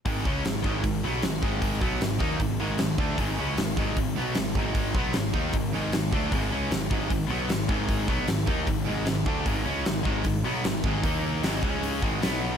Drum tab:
HH |o-o-o-o-|o-o-o-o-|o-o-o-o-|o-o-o-o-|
SD |--o---o-|--o---o-|--o---o-|--o---o-|
BD |oo-oo--o|oo-oo--o|o--oo--o|oo-oo--o|

HH |o-o-o-o-|o-o-o-o-|o-o-o-o-|o-o-o-o-|
SD |--o---o-|--o---o-|--o---o-|--o---o-|
BD |o--oo--o|oo-oo--o|o--oo--o|o--o-o--|